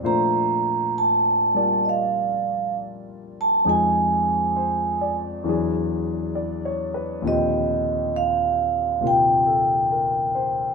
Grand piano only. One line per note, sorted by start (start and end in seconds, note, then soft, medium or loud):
0.03 3.66 A#2 medium
0.03 3.64 F3 soft
0.03 3.66 A3 soft
0.03 3.67 D4 soft
0.03 3.67 C5 medium
1.55 3.66 G3 soft
1.55 3.66 A#3 soft
1.55 3.67 F4 soft
1.55 3.67 D5 soft
3.65 5.44 F2 soft
3.65 5.45 F3 soft
3.65 5.45 G#3 soft
3.65 5.45 D#4 soft
3.65 5.45 G#4 medium
4.56 5.27 C5 soft
5.01 5.64 D5 soft
5.44 7.22 E2 medium
5.44 7.23 E3 soft
5.44 7.24 F#3 soft
5.48 7.25 D4 soft
5.48 7.25 G#4 medium
6.35 6.92 D5 soft
6.65 7.11 C#5 soft
6.94 7.40 B4 soft
7.22 10.74 D#2 medium
7.22 9.00 A#2 soft
7.22 10.74 D3 soft
7.22 10.74 F3 soft
7.26 10.74 C4 soft
7.26 10.74 G4 medium
9.01 10.74 A#2 soft
9.01 10.74 C3 soft
9.01 10.74 D#3 soft
9.01 10.74 A#3 soft
9.01 10.74 F4 soft
9.46 10.08 A4 soft
9.91 10.62 A#4 soft
10.35 10.74 C5 soft